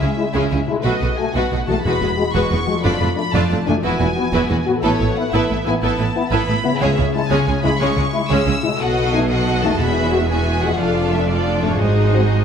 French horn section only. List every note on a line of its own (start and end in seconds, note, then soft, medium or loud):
0.18 0.24 G#3 soft
0.18 0.24 E4 soft
0.69 0.75 G#3 soft
0.69 0.75 E4 soft
1.17 1.24 A3 soft
1.17 1.24 F#4 soft
1.68 1.74 A3 soft
1.68 1.74 F#4 soft
2.17 2.23 G#3 soft
2.17 2.23 F#4 soft
2.66 2.73 G#3 soft
2.66 2.73 F#4 soft
3.16 3.23 A3 soft
3.16 3.23 D4 soft
3.67 3.73 A3 medium
3.67 3.73 D4 soft
4.17 4.23 B3 medium
4.17 4.23 F#4 medium
4.67 4.73 B3 soft
4.67 4.73 F#4 soft
5.17 5.23 B3 soft
5.17 5.23 E4 soft
5.67 5.73 B3 medium
5.67 5.74 E4 medium
6.16 6.22 B3 medium
6.16 6.22 E4 soft
6.64 6.71 B3 medium
6.64 6.70 E4 medium
7.15 7.21 G#3 soft
7.15 7.21 E4 soft
7.64 7.70 G#3 medium
7.64 7.70 E4 medium
8.13 8.19 G#3 medium
8.13 8.20 E4 medium
8.63 8.69 G#3 medium
8.63 8.70 E4 medium
9.13 9.19 A3 medium
9.13 9.19 D#4 soft
9.64 9.70 A3 medium
9.64 9.70 D#4 soft
10.11 10.18 G#3 soft
10.11 10.18 F#4 soft
10.62 10.68 G#3 soft
10.62 10.69 F#4 soft
11.12 11.18 A3 soft
11.12 11.18 D4 soft
11.61 11.68 A3 soft
11.61 11.68 D4 soft
12.14 12.20 F#3 soft
12.14 12.20 C4 soft